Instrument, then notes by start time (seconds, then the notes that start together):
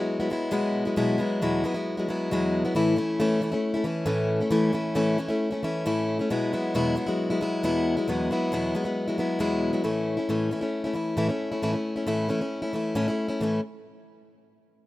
steel-string acoustic guitar
Already playing: B3 E4
0.00 F#3 G#3
0.20 F#3 G#3 B3 E4
0.30 F#3 G#3 B3 E4
0.51 E2 B2 F#3 G#3 B3 E4
0.85 F#3 G#3 B3 E4
0.96 E2 B2 F#3 G#3 B3 E4
1.18 F#3 G#3 B3 E4
1.42 E2 B2 F#3 G#3 B3 E4
1.64 F#3 G#3 B3 E4
1.74 F#3 G#3 B3 E4
1.97 F#3 G#3 B3 E4
2.09 F#3 G#3 B3 E4
2.31 E2 B2 F#3 G#3 B3 E4
2.65 F#3 G#3 B3 E4
2.75 A2 E3 A3 C#4 E4
2.96 E3 A3 C#4 E4
3.20 A2 E3 A3 C#4 E4
3.41 E3 A3 C#4 E4
3.52 A3 C#4 E4
3.74 A3 C#4 E4
3.84 E3 A3 C#4 E4
4.06 A2 E3 A3 C#4 E4
4.41 A3 C#4 E4
4.51 A2 E3 A3 C#4 E4
4.73 E3 A3 C#4 E4
4.95 A2 E3 A3 C#4 E4
5.19 A3 C#4 E4
5.28 A3 C#4 E4
5.51 A3 C#4 E4
5.63 E3 A3 C#4 E4
5.86 A2 E3 A3 C#4 E4
6.19 A3 C#4 E4
6.30 E2 B2 F#3 G#3 B3 E4
6.53 F#3 G#3 B3 E4
6.74 E2 B2 F#3 G#3 B3 E4
6.96 F#3 G#3 B3 E4
7.06 F#3 G#3 B3 E4
7.30 F#3 G#3 B3 E4
7.41 F#3 G#3 B3 E4
7.63 E2 B2 F#3 G#3 B3 E4
7.97 F#3 G#3 B3 E4
8.08 E2 B2 F#3 G#3 B3 E4
8.31 F#3 G#3 B3 E4
8.52 E2 B2 F#3 G#3 B3 E4
8.75 F#3 G#3 B3 E4
8.84 F#3 G#3 B3 E4
9.08 F#3 G#3 B3 E4
9.18 F#3 G#3 B3 E4
9.39 E2 B2 F#3 G#3 B3 E4
9.73 F#3 G#3 B3 E4
9.84 A2 E3 A3 C#4 E4
10.17 A3 C#4 E4
10.29 A2 E3 A3 C#4 E4
10.51 E3 A3 C#4 E4
10.61 A3 C#4 E4
10.84 A3 C#4 E4
10.94 E3 A3 C#4 E4
11.17 A2 E3 A3 C#4 E4
11.29 A3 C#4 E4
11.52 A3 C#4 E4
11.63 A2 E3 A3 C#4 E4
11.73 A3 C#4 E4
11.96 A3 C#4 E4
12.07 A2 E3 A3 C#4 E4
12.29 E3 A3 C#4 E4
12.41 A3 C#4 E4
12.62 A3 C#4 E4
12.73 E3 A3 C#4 E4
12.95 A2 E3 A3 C#4 E4
13.08 A3 C#4 E4
13.28 A3 C#4 E4
13.41 A2 E3 A3 C#4 E4